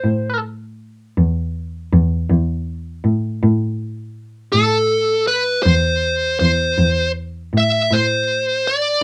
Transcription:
Already playing: lead electric guitar C5
0.04 cello A2
1.17 cello E2
1.93 cello E2
2.30 cello E2
3.04 cello A2
3.43 cello A2
4.52 cello A2, lead electric guitar A4
5.27 lead electric guitar B4
5.63 cello E2, lead electric guitar C5
6.39 cello E2, lead electric guitar C5
6.77 cello E2
7.53 cello A2
7.58 lead electric guitar E5
7.91 cello A2, lead electric guitar C5
8.67 lead electric guitar D5

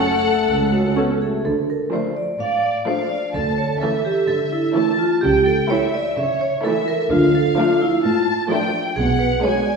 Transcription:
Already playing: french horn section A3, violin section A4 F#5
0.47 double bass section C#2, cello section C#2
0.72 french horn section C#4, vibraphone F#4
0.96 french horn section B3, viola section C#4 A4
1.21 french horn section A3, vibraphone G#4
1.45 double bass section D2, cello section D3, vibraphone A4
1.70 vibraphone A#4
1.92 viola section F3 A3, violin section A3 D4, vibraphone C5
2.17 vibraphone D5
2.40 cello section A2, violin section D5, vibraphone F5
2.64 vibraphone D5
2.87 viola section F3 A3, violin section A3 D4 F5, vibraphone C5
3.10 vibraphone D5
3.34 double bass section D2, cello section D3, vibraphone A4, violin section A5
3.58 vibraphone C#5
3.81 viola section E3 A3, violin section A3 C#4 E5, vibraphone A4
4.05 vibraphone G4
4.28 cello section D3, vibraphone A4
4.53 vibraphone E4
4.74 viola section E3 A3, violin section A3 C#4 A5
4.99 vibraphone F4
5.21 double bass section C#2, cello section C#3, vibraphone G4, violin section G5
5.46 vibraphone A4
5.70 viola section E3 A3, violin section A3 E4 E5, vibraphone C#5
5.94 vibraphone D5
6.17 cello section C#3, violin section C#5, vibraphone E5
6.41 vibraphone C#5
6.64 viola section E3 A3, violin section A3 E4 E5, vibraphone A4
6.88 vibraphone A#4
7.11 double bass section D2, cello section D3, vibraphone F4, violin section F5
7.35 vibraphone A4
7.57 viola section F3 A3, violin section A3 D4, vibraphone F4
7.81 vibraphone E4
8.03 cello section A2, vibraphone F4, violin section A5
8.50 viola section F3 A3, violin section A3 D4 G5
8.96 double bass section B1, cello section B2, vibraphone G#4, violin section F#5
9.19 vibraphone B4
9.43 viola section F#3 G#3, violin section B3 D4 G#5, vibraphone C#5
9.66 vibraphone D5

